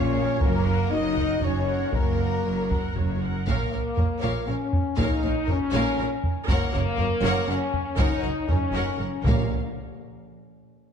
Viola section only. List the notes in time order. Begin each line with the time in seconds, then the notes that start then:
Already playing: F4 C#5
0.16 A#4 F5
0.40 F#4 C#5
0.66 A#4 F#5
0.90 F#4 C#5
1.15 A#4 F#5
1.41 F#4 C#5
1.67 A#4 F#5
1.93 F#4 C#5
2.18 A#4 F#5
2.44 F#4 C#5
2.71 A#4 F#5
2.96 F#4 C#5
3.22 A#4 F#5
3.48 A#4
3.73 A#4
3.98 A#4
4.23 A#4
4.48 A#4
4.99 A#4
5.25 A#4
5.49 A#4
5.75 A#4
5.99 A#4
6.49 A#4
6.73 A#4
6.99 A#4
7.24 A#4
7.48 A#4
7.97 A#4
8.21 A#4
8.48 A#4
8.73 A#4
8.99 A#4
9.23 A#4